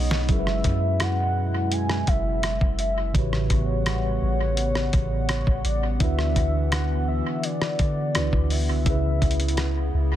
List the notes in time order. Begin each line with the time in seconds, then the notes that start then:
Already playing: B1 B2 C#3 G#3 B3 D#4 G#4 C#5 D#5 F#5 B5
0.11 snare
0.27 F#1 B2 F#3 G#3 C#4 E4 E5, kick, closed hi-hat
0.31 G#4 A#4
0.39 B4
0.47 cross-stick
0.64 F#2, kick, closed hi-hat
1.00 F#5, cross-stick, closed hi-hat
1.72 G#5, closed hi-hat
1.90 cross-stick
2.07 F#1 E5, kick, closed hi-hat
2.43 cross-stick, closed hi-hat
2.61 F#1, kick
2.79 E5, closed hi-hat
3.12 A1 A2 C#3 E3 G3 B3 F#4 C#5 F#5, kick, closed hi-hat
3.17 G4 B4
3.33 cross-stick
3.50 A1, kick, closed hi-hat
3.86 cross-stick, closed hi-hat
4.22 A1
4.57 closed hi-hat
4.75 cross-stick
4.93 A1, kick, closed hi-hat
5.29 C#5, cross-stick, closed hi-hat
5.47 A1, kick
5.65 A1 D5, closed hi-hat
5.98 D2 D3 E3 D4 E4 F#4 E5, kick, closed hi-hat
6.04 B4
6.19 cross-stick
6.36 D2, kick, closed hi-hat
6.72 F#5, cross-stick, closed hi-hat
7.08 E5
7.44 D5, closed hi-hat
7.62 cross-stick
7.79 D3, kick, closed hi-hat
8.14 C#2 D3 D4 E4 F#4 B4, cross-stick, closed hi-hat
8.33 D2, kick
8.50 E5, open hi-hat
8.69 C#2
8.84 C#2 C#3 B3 C#4 E4, kick, closed hi-hat
8.89 G#4 B4
9.22 C#2, kick, closed hi-hat
9.31 closed hi-hat
9.40 closed hi-hat
9.48 closed hi-hat
9.57 cross-stick, closed hi-hat
9.94 C#2